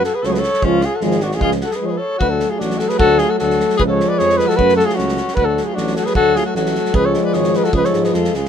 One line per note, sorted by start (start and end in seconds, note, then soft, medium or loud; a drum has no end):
0.04 0.16 F#4 medium
0.04 0.17 A4 medium
0.04 snare soft
0.14 0.24 G#4 medium
0.14 0.27 B4 medium
0.22 0.45 C#2 medium
0.22 0.40 F#3 medium
0.22 0.40 A3 medium
0.22 0.30 A4 medium
0.22 0.35 C#5 loud
0.22 snare soft
0.29 0.40 G#4 medium
0.34 0.41 B4 medium
0.34 snare soft
0.38 0.65 A4 medium
0.38 0.67 C#5 loud
0.43 snare soft
0.54 snare soft
0.62 0.85 C#2 loud
0.62 0.79 F3 medium
0.62 0.78 G#3 medium
0.62 0.85 C#4 medium
0.62 kick medium
0.66 0.87 F4 loud
0.81 0.96 F4 medium
0.81 snare soft
0.85 0.98 G#4 loud
0.95 1.03 F#4 medium
0.95 1.06 A4 medium
1.01 1.42 G#1 loud
1.01 1.18 F3 medium
1.01 1.17 G#3 medium
1.01 1.23 F4 medium
1.01 1.25 G#4 medium
1.01 snare soft
1.11 snare soft
1.20 1.34 D4 medium
1.20 1.36 F#4 medium
1.20 snare soft
1.31 1.41 F4 medium
1.31 1.43 G#4 medium
1.31 snare soft
1.39 1.62 C#2 medium
1.39 1.58 F3 medium
1.39 1.56 G#3 medium
1.39 1.51 F4 loud
1.39 kick medium
1.44 1.53 G#4 medium
1.51 snare soft
1.61 1.73 F#4 medium
1.61 snare soft
1.65 1.77 A4 medium
1.71 1.81 G#4 medium
1.71 snare soft
1.76 1.87 B4 medium
1.80 1.98 F3 medium
1.80 1.96 G#3 medium
1.80 1.86 G#4 medium
1.86 1.99 G#4 medium
1.86 1.92 C#5 medium
1.91 2.00 B4 medium
1.97 2.18 A4 medium
1.97 2.20 C#5 medium
2.18 2.43 D2 medium
2.18 3.82 F#3 medium
2.18 3.82 A3 medium
2.18 2.29 F#4 loud
2.18 2.32 B4 loud
2.18 kick medium
2.29 2.51 F#4 medium
2.29 2.52 A4 medium
2.40 snare soft
2.50 2.60 F4 medium
2.50 2.63 G#4 medium
2.59 2.82 A1 medium
2.59 2.80 D4 medium
2.59 2.81 F#4 medium
2.59 snare soft
2.70 snare soft
2.78 2.90 F#4 medium
2.78 2.91 A4 medium
2.78 snare soft
2.89 2.98 G#4 medium
2.89 2.99 B4 loud
2.89 snare soft
2.99 3.21 D2 loud
2.99 3.21 F#4 loud
2.99 3.20 A4 loud
2.99 kick loud
3.18 3.31 F4 medium
3.18 3.31 G#4 loud
3.18 snare soft
3.30 3.38 F#4 medium
3.30 3.39 A4 medium
3.39 3.62 D2 medium
3.39 3.76 F#4 medium
3.39 3.76 A4 loud
3.39 snare soft
3.50 snare soft
3.60 snare soft
3.70 snare soft
3.77 4.01 C#2 loud
3.77 4.60 F3 medium
3.77 4.61 G#3 medium
3.77 3.82 G#4 loud
3.77 3.84 B4 loud
3.77 kick medium
3.88 4.11 A4 medium
3.88 4.10 C#5 loud
4.00 snare soft
4.09 4.20 B4 medium
4.09 4.20 D5 medium
4.18 4.41 F2 medium
4.18 4.38 G#4 medium
4.18 4.39 C#5 loud
4.18 snare soft
4.29 snare soft
4.37 4.48 G#4 medium
4.37 4.50 B4 loud
4.37 snare soft
4.47 4.55 F#4 medium
4.47 4.58 A4 loud
4.47 snare soft
4.55 4.80 F#2 medium
4.55 5.21 F#3 medium
4.55 5.22 A3 medium
4.55 4.75 F#4 loud
4.55 4.76 B4 loud
4.55 kick medium
4.69 snare soft
4.76 4.87 F#4 medium
4.76 4.88 A4 loud
4.76 snare soft
4.86 4.98 F4 medium
4.86 4.96 G#4 medium
4.86 snare soft
4.95 5.19 C#2 medium
4.95 5.38 C#4 medium
4.95 5.36 F#4 loud
4.95 snare soft
5.08 snare soft
5.17 snare soft
5.28 snare soft
5.35 5.59 D2 medium
5.35 6.95 F#3 medium
5.35 6.91 A3 medium
5.35 5.47 F#4 loud
5.35 5.46 B4 loud
5.35 kick medium
5.45 5.69 F#4 medium
5.45 5.66 A4 loud
5.57 snare soft
5.64 5.77 F4 medium
5.64 5.76 G#4 medium
5.74 5.99 A1 medium
5.74 5.96 D4 medium
5.74 5.94 F#4 medium
5.74 snare soft
5.87 snare soft
5.95 6.07 F#4 medium
5.95 6.08 A4 medium
5.95 snare soft
6.05 6.15 G#4 medium
6.05 6.16 B4 loud
6.05 snare soft
6.15 6.37 D2 medium
6.15 6.39 F#4 loud
6.15 6.37 A4 loud
6.15 kick medium
6.36 6.45 F4 medium
6.36 6.46 G#4 loud
6.36 snare soft
6.46 6.54 F#4 medium
6.46 6.55 A4 medium
6.54 6.76 A1 medium
6.54 6.97 F#4 medium
6.54 6.97 A4 loud
6.54 snare soft
6.66 snare soft
6.75 snare soft
6.85 snare soft
6.93 7.15 C#2 loud
6.93 7.72 F3 medium
6.93 7.69 G#3 medium
6.93 7.08 G#4 loud
6.93 7.07 B4 loud
6.93 kick loud
7.06 7.26 A4 medium
7.06 7.26 C#5 medium
7.14 snare soft
7.24 7.35 B4 medium
7.24 7.37 D5 medium
7.33 7.55 G#1 medium
7.33 7.55 G#4 medium
7.33 7.58 C#5 medium
7.33 snare soft
7.44 snare soft
7.53 7.66 G#4 medium
7.53 7.66 B4 loud
7.53 snare soft
7.64 7.73 F#4 medium
7.64 7.74 A4 medium
7.64 snare soft
7.72 7.84 C#2 loud
7.72 8.35 F3 medium
7.72 8.35 G#3 medium
7.72 7.87 G#4 medium
7.72 7.87 B4 loud
7.72 kick medium
7.84 8.06 A4 medium
7.84 8.07 C#5 medium
7.84 snare soft
7.92 8.10 G#2 medium
7.92 snare soft
8.04 8.16 G#4 medium
8.04 8.15 B4 medium
8.04 snare soft
8.13 8.31 F2 medium
8.13 8.35 F4 medium
8.13 8.37 A4 medium
8.13 snare soft
8.24 snare soft
8.34 8.49 C#2 medium
8.34 8.49 F4 medium
8.34 8.49 G#4 medium
8.34 snare soft
8.45 snare soft